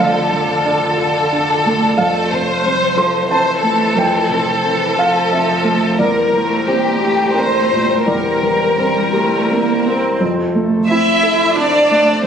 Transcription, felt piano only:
Already playing: A3
0.00 F2 F5
0.33 F3
0.66 D4 D5
0.98 A4
1.32 D4
1.66 A3
1.97 F2 F5
2.32 C3
2.64 C4
2.97 A4 C6
3.29 C4 A5
3.63 A3
3.95 F2 G5
4.29 C3
4.64 C4
4.97 A4 F5
5.31 C4 E5
5.64 A3
5.99 E2 D5
6.33 E3
6.67 C4 C5
7.01 G4
7.34 C4 A#4
7.71 A#2
8.06 E2 D5
8.43 E3
8.78 C4 C5
9.12 G4
9.49 C4
9.86 A#3
10.20 F2
10.55 A3
10.89 C4
11.23 A4
11.56 C4
11.91 A3
12.23 F2

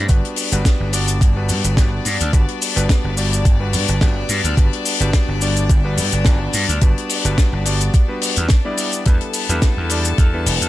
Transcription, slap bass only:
0.09 G1
0.52 G1
0.80 G1
1.21 G1
1.49 G2
1.64 G1
1.77 G1
2.05 G2
2.21 D2
2.33 G1
2.76 G1
3.04 G1
3.45 G1
3.73 G2
3.88 G1
4.01 G1
4.29 G2
4.44 D2
4.57 G1
5.00 G1
5.28 G1
5.70 G1
5.97 G2
6.12 G1
6.26 G1
6.54 G2
6.69 D2
6.82 G1
7.25 G1
7.53 G1
8.37 E2
9.06 E2
9.49 E2
9.77 E2
10.18 E2
10.46 E1
10.61 E2

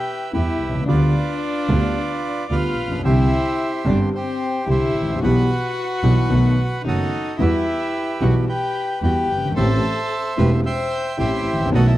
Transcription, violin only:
Already playing: G4
0.34 E4
0.88 D4
2.50 F4
3.06 E4
3.86 D4
4.15 C4
4.67 E4
5.23 F#4
6.85 D#4
7.40 E4
8.21 F#4
8.48 G4
9.02 G4
9.58 A4
10.39 B4
10.67 C5
11.21 E4
11.75 F#4
11.87 E4

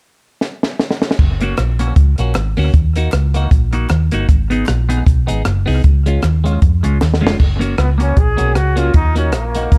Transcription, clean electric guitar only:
1.42 A#3 C#4 F#4
1.79 A#3 C#4 F#4
1.95 muted clean electric guitar stroke
2.19 A#3 C#4 F#4
2.57 A#3 C#4 F#4
2.96 A#3 D#4 F#4
3.34 A#3 D#4 F#4
3.73 A#3 D#4 F#4
4.12 A#3 D#4 F#4
4.50 B3 D#4 G#4
4.89 B3 D#4 G#4
5.05 muted clean electric guitar stroke
5.27 B3 D#4 G#4
5.66 B3 D#4 G#4
6.06 G#3 C#4 F4
6.44 G#3 C#4 F4
6.63 muted clean electric guitar stroke
6.83 G#3 C#4 F4
7.21 G#3 C#4 F4
7.59 A#3 C#4 F#4
7.98 A#3 C#4 F#4
8.37 A#3 C#4 F#4
8.76 A#3 C#4 F#4
9.15 A#3 D#4 F#4
9.55 A#3 D#4 F#4
9.71 muted clean electric guitar stroke

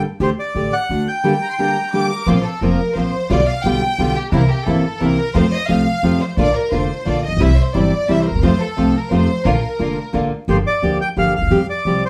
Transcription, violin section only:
1.41 A#5
1.49 C6
1.58 A#5
1.92 D6
2.09 A#4
2.27 C5
2.44 A4
2.61 A#4
2.95 C5
3.29 D5
3.46 F5
3.63 G5
4.15 G4
4.32 A#4
4.49 G4
4.66 A4
5.01 A#4
5.35 C5
5.52 D#5
5.69 F5
6.20 C5
6.38 D5
6.55 A#4
6.73 C5
7.07 D5
7.24 D#5
7.40 E5
7.58 C5
7.75 D5
8.09 E5
8.21 C5
8.26 A#4
8.43 C5
8.61 A4
8.95 A#4
9.11 C5
9.45 A#4

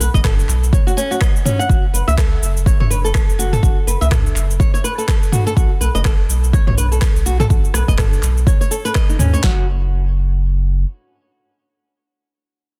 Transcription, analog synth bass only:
0.00 B1
0.14 F#1
0.49 B1
1.69 F#1
1.94 F#1
2.08 C#2
2.42 F#1
2.80 F#1
3.29 F#1
3.63 F#1
3.87 F#1
4.01 C#2
4.36 F#1
5.57 B1
5.81 B1
5.95 F#1
6.29 B1
6.67 B1
7.16 B1
7.50 B1
7.74 B1
7.88 F#1
8.23 B1
9.19 D#2
9.44 F#1

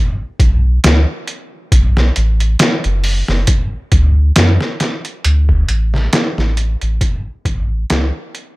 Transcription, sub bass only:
0.40 B1
0.84 D2
1.72 B1
2.17 A1
2.85 F#1
3.29 F#1
3.92 D2
4.37 F#2
5.25 D2
5.69 A1
6.38 A1
6.82 A1
7.46 A1
7.91 C#2

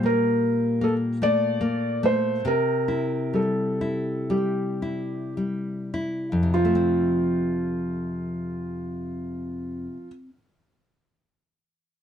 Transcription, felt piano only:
0.06 A#4
0.84 A4
1.23 D5
2.06 C5
2.47 A#4
3.35 A4
4.31 G4
6.54 F4

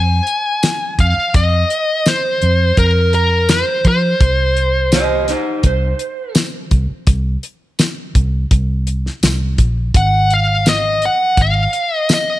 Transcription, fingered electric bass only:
Already playing: F2
0.99 F2
1.17 muted fingered electric bass stroke
1.35 F2
2.43 F2
2.77 F2
3.85 F3
4.21 C2
5.64 C2
6.72 C2
6.91 muted fingered electric bass stroke
7.07 C2
8.15 C2
8.51 C2
9.23 C2
9.59 A#1
9.95 G#1
11.38 G#1

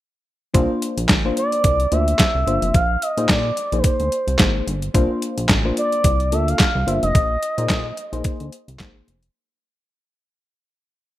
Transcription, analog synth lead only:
1.38 D5
1.93 E5
2.75 F5
3.03 D#5
3.30 D5
3.78 B4
3.85 C5
5.78 D5
6.34 E5
6.49 F5
6.88 E5
7.03 D#5

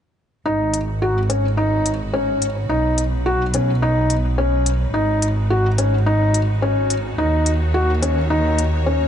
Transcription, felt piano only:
0.46 D#4
1.02 F#4
1.30 C#4
1.57 D#4
2.14 C#4
2.69 D#4
3.26 F#4
3.54 C#4
3.82 D#4
4.38 C#4
4.94 D#4
5.50 F#4
5.78 C#4
6.06 D#4
6.62 C#4
7.18 D#4
7.74 F#4
8.02 C#4
8.30 D#4
8.86 C#4

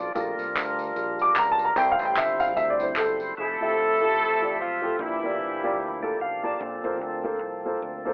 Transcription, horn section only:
3.39 A3 C4 E4 A4
4.59 F3 A3 C4 F4
5.00 E3 G3 E4

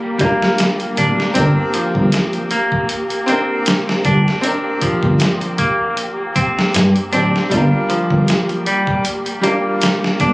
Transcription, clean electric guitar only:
0.21 A#3
0.98 D4
1.75 F3
2.51 A#3
3.29 C4
4.05 D4
4.82 F3
5.59 A#3
6.36 C4
7.13 D4
7.90 F3
8.67 G3
9.43 A#3
10.21 D4

